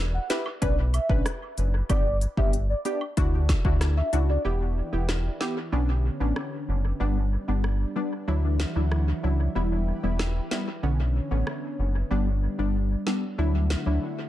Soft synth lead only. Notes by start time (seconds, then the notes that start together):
0.14 F#5
0.30 E5
0.62 D5
0.94 E5
1.90 D5
2.37 E5
2.69 D5
2.85 D5
3.97 E5
4.29 D5